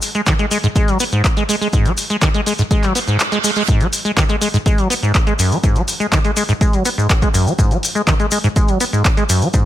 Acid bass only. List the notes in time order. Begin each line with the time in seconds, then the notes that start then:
0.15 G#3
0.27 D#3
0.39 G#3
0.51 G#3
0.64 G#2
0.76 G#3
0.88 F#3
1.00 B3
1.12 G#2
1.37 G#3
1.49 G#3
1.61 G#3
1.74 G#2
1.86 G#3
2.10 G#3
2.22 D#3
2.35 G#3
2.47 G#3
2.59 G#2
2.71 G#3
2.83 F#3
2.95 B3
3.08 G#2
3.32 G#3
3.44 G#3
3.56 G#3
3.68 G#2
3.81 G#3
4.05 G#3
4.17 D#3
4.29 G#3
4.41 G#3
4.54 G#2
4.66 G#3
4.78 F#3
4.90 B3
5.03 G#2
5.27 G#3
5.39 F#2
5.51 G#3
5.63 G#2
5.76 G#3
6.00 G#3
6.12 D#3
6.25 G#3
6.37 G#3
6.49 G#2
6.61 G#3
6.73 F#3
6.85 B3
6.98 G#2
7.22 G#3
7.34 F#2
7.46 G#3
7.59 G#2
7.71 G#3
7.95 G#3
8.07 D#3
8.20 G#3
8.32 G#3
8.44 G#2
8.56 G#3
8.68 F#3
8.81 B3
8.93 G#2
9.17 G#3
9.29 F#2
9.42 G#3
9.54 G#2